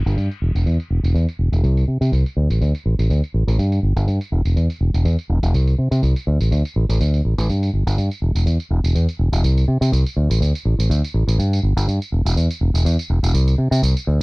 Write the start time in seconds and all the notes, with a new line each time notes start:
0.06 G1, tambourine
0.17 G2, tambourine
0.31 tambourine
0.42 E1
0.55 E1, tambourine
0.66 E2, tambourine
0.80 tambourine
0.90 E1
1.03 E1, tambourine
1.14 E2, tambourine
1.29 tambourine
1.39 E1
1.52 E1, tambourine
1.63 C2, tambourine
1.77 tambourine
1.88 C3
2.01 C3, tambourine
2.12 C2, tambourine
2.26 tambourine
2.37 D2
2.50 A1, tambourine
2.61 D2, tambourine
2.75 tambourine
2.86 A1
2.99 A1, tambourine
3.10 D2, tambourine
3.24 tambourine
3.34 A1
3.47 A1, tambourine
3.58 G2, tambourine
3.72 tambourine
3.83 G1
3.96 G1, tambourine
4.07 G2, tambourine
4.21 tambourine
4.32 E1
4.45 E1, tambourine
4.56 E2, tambourine
4.70 tambourine
4.81 E1
4.94 E1, tambourine
5.05 E2, tambourine
5.19 tambourine
5.29 E1
5.43 E1, tambourine
5.54 C2, tambourine
5.67 tambourine
5.78 C3
5.91 C3, tambourine
6.03 C2, tambourine
6.16 tambourine
6.27 D2
6.40 A1, tambourine
6.51 D2, tambourine
6.65 tambourine
6.76 A1
6.89 A1, tambourine
7.00 D2, tambourine
7.14 tambourine
7.25 A1
7.38 A1, tambourine
7.49 G2, tambourine
7.63 tambourine
7.73 G1
7.87 G1, tambourine
7.98 G2, tambourine
8.11 tambourine
8.22 E1
8.35 E1, tambourine
8.46 E2, tambourine
8.60 tambourine
8.70 E1
8.84 E1, tambourine
8.95 E2, tambourine
9.09 tambourine
9.19 E1
9.32 E1, tambourine
9.43 C2, tambourine
9.58 tambourine
9.68 C3
9.81 C3, tambourine
9.92 C2, tambourine
10.06 tambourine
10.16 D2
10.30 A1, tambourine
10.41 D2, tambourine
10.55 tambourine
10.65 A1
10.79 A1, tambourine
10.90 D2, tambourine
11.04 tambourine
11.14 A1
11.27 A1, tambourine
11.39 G2, tambourine
11.53 tambourine
11.63 G1
11.77 G1, tambourine
11.88 G2, tambourine
12.02 tambourine
12.12 E1
12.25 E1, tambourine
12.36 E2, tambourine
12.51 tambourine
12.61 E1
12.74 E1, tambourine
12.85 E2, tambourine
12.99 tambourine
13.10 E1
13.23 E1, tambourine
13.34 C2, tambourine
13.48 tambourine
13.58 C3
13.71 C3, tambourine
13.83 C2, tambourine
13.97 tambourine
14.07 D2